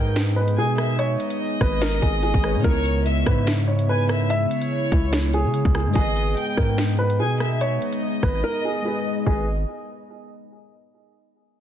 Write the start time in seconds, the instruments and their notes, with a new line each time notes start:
Already playing: 808-style bass G#2, synth keys G#3 G#4 B4 D#5, analog synth pad G#3 B3 D#4, grand piano A#4, violin section G5
0.16 snare, closed hi-hat
0.36 grand piano B4
0.48 closed hi-hat
0.57 808-style bass B2, grand piano G#4, violin section G#5
0.78 violin section E5, cross-stick, closed hi-hat
0.99 grand piano C#5, closed hi-hat
1.20 violin section D#5, closed hi-hat
1.30 closed hi-hat
1.61 808-style bass G#1, grand piano B4, kick, cross-stick, closed hi-hat
1.81 grand piano A#4, snare, closed hi-hat
2.02 808-style bass G#1, grand piano G#4, kick, closed hi-hat
2.23 grand piano G#4, closed hi-hat
2.34 808-style bass G#1, kick
2.41 synth keys G#3 G#4 B4, cross-stick
2.47 synth keys C#5
2.55 808-style bass B2
2.59 synth keys C#3 B3
2.64 808-style bass C#2, analog synth pad C#3 E4, synth keys E4, grand piano A#4, violin section C#5, kick, closed hi-hat
2.70 synth keys C#5
2.85 closed hi-hat
3.06 violin section E5, closed hi-hat
3.26 808-style bass G#2, grand piano B4, kick, cross-stick, closed hi-hat
3.47 snare, closed hi-hat
3.67 grand piano C#5
3.79 closed hi-hat
3.89 grand piano B4, violin section G#5
4.09 violin section E5, cross-stick, closed hi-hat
4.30 grand piano E5, closed hi-hat
4.51 violin section C#5, closed hi-hat
4.62 closed hi-hat
4.92 808-style bass C#2, grand piano E4, kick, closed hi-hat
5.13 snare, closed hi-hat
5.24 closed hi-hat
5.33 grand piano G#4, closed hi-hat
5.44 808-style bass C#3
5.54 closed hi-hat
5.65 808-style bass C#2, kick
5.75 grand piano G#4, cross-stick
5.86 808-style bass G#2
5.90 synth keys G#3 G#4
5.95 808-style bass G#1, analog synth pad G#3 B3 D#4, grand piano G#4, synth keys B4, violin section D#5, kick, closed hi-hat
6.01 synth keys D#5
6.16 closed hi-hat
6.37 violin section G5, closed hi-hat
6.57 808-style bass G#2, grand piano A#4, kick, cross-stick, closed hi-hat
6.78 snare, closed hi-hat
6.99 grand piano B4
7.10 closed hi-hat
7.20 808-style bass B2, grand piano G#4, violin section G#5
7.40 violin section E5, cross-stick, closed hi-hat
7.61 grand piano C#5, closed hi-hat
7.82 violin section D#5, closed hi-hat
7.93 closed hi-hat
8.23 808-style bass G#1, grand piano B4, kick, cross-stick, closed hi-hat
8.44 grand piano A#4
8.65 grand piano G#4
8.82 synth keys G#3 G#4 B4, grand piano G#4
8.88 synth keys D#5
9.26 808-style bass G#1, synth keys G#3 G#4 B4 D#5, grand piano G#4, violin section D#5, kick, crash